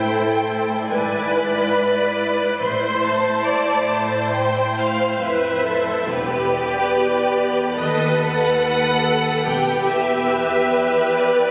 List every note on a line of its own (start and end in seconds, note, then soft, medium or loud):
0.00 0.86 A2 soft
0.00 0.86 E4 soft
0.00 0.90 A4 soft
0.00 0.86 C5 soft
0.00 0.90 G5 medium
0.89 1.72 G#1 soft
0.89 2.62 G#2 soft
0.89 2.59 E4 soft
0.89 2.62 B4 soft
0.89 2.59 D5 soft
0.89 1.33 G#5 soft
1.32 2.62 B5 medium
2.61 3.43 A1 soft
2.61 5.22 A2 soft
2.61 5.18 E4 soft
2.61 3.45 C5 soft
2.61 5.18 C5 soft
2.61 3.03 C6 soft
3.03 4.34 A5 medium
3.46 3.90 D5 soft
3.89 5.21 C5 soft
4.33 4.78 G5 soft
4.79 5.14 F5 medium
5.15 5.22 F5 soft
5.21 6.07 F2 soft
5.21 6.07 E4 soft
5.21 5.65 B4 soft
5.21 6.07 C5 soft
5.21 6.08 E5 medium
5.64 6.08 A4 soft
6.08 6.90 E1 soft
6.08 7.75 E2 soft
6.08 7.78 G4 soft
6.08 6.51 B4 medium
6.08 7.76 B4 soft
6.51 7.78 D5 medium
7.77 8.59 D#2 soft
7.77 9.47 D#2 medium
7.77 9.44 A4 medium
7.77 8.61 B4 soft
7.77 9.44 B4 soft
7.77 8.20 D#5 medium
8.21 9.47 F#5 medium
8.62 9.04 B4 medium
9.05 9.47 A4 soft
9.46 10.26 E1 soft
9.46 11.51 E2 soft
9.46 10.29 G4 medium
9.46 11.51 G4 medium
9.46 11.51 B4 soft
9.46 9.88 G5 medium
9.88 11.11 E5 medium
10.29 11.51 B4 medium
11.13 11.51 D5 medium